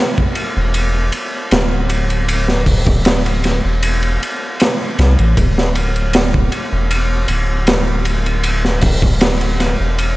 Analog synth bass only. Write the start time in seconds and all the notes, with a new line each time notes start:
0.57 E1
1.52 D1
3.65 E1
4.99 C2
5.19 A1
5.37 D1
6.73 E1
7.29 D1
9.80 E1